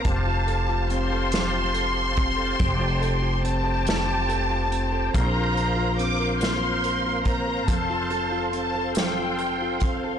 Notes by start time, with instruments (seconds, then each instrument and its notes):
Already playing: nylon-string guitar A#3 C4 F4 A#4, tonewheel organ F5
0.05 upright bass F1, nylon-string guitar F3, tonewheel organ G4 C5 A5, violin section A5, kick, closed hi-hat
0.26 nylon-string guitar F4
0.47 nylon-string guitar A4, closed hi-hat
0.69 nylon-string guitar F4
0.90 nylon-string guitar C4, violin section C6, closed hi-hat
1.12 nylon-string guitar A4
1.32 nylon-string guitar F3, snare, closed hi-hat
1.53 nylon-string guitar F4
1.74 nylon-string guitar A4, closed hi-hat
1.96 nylon-string guitar F4
2.16 nylon-string guitar C4, kick, closed hi-hat
2.37 nylon-string guitar A4
2.59 upright bass F1, nylon-string guitar F3, tonewheel organ G5, kick, closed hi-hat
2.80 nylon-string guitar F4
3.01 nylon-string guitar A4, closed hi-hat
3.22 nylon-string guitar F4
3.43 nylon-string guitar C4, violin section A5, closed hi-hat
3.64 nylon-string guitar A4
3.85 nylon-string guitar F3, snare, closed hi-hat
4.07 nylon-string guitar F4
4.29 nylon-string guitar A4, closed hi-hat
4.50 nylon-string guitar F4
4.71 nylon-string guitar C4, closed hi-hat
4.92 nylon-string guitar A4
5.13 upright bass A#1, nylon-string guitar A#3, tonewheel organ A#4 F5 C6, violin section A#5, kick, closed hi-hat
5.35 nylon-string guitar F4
5.55 nylon-string guitar A#4, closed hi-hat
5.76 nylon-string guitar F4
5.99 nylon-string guitar C4, violin section D6, closed hi-hat
6.20 nylon-string guitar A#4
6.40 nylon-string guitar A#3, violin section C6, snare, closed hi-hat
6.63 nylon-string guitar F4
6.84 nylon-string guitar A#4, closed hi-hat
7.06 nylon-string guitar F4
7.25 nylon-string guitar C4, violin section A#5, kick, closed hi-hat
7.48 nylon-string guitar A#4
7.68 upright bass F1, nylon-string guitar F3, tonewheel organ A4, violin section A5, kick, closed hi-hat
7.90 nylon-string guitar F4
8.10 nylon-string guitar A4, closed hi-hat
8.32 nylon-string guitar F4
8.53 nylon-string guitar C4, violin section A5, closed hi-hat
8.75 nylon-string guitar A4
8.95 nylon-string guitar F3, violin section G5, snare, closed hi-hat
9.18 nylon-string guitar F4
9.39 nylon-string guitar A4, closed hi-hat
9.62 nylon-string guitar F4
9.80 nylon-string guitar C4, violin section F5, kick, closed hi-hat
10.04 nylon-string guitar A4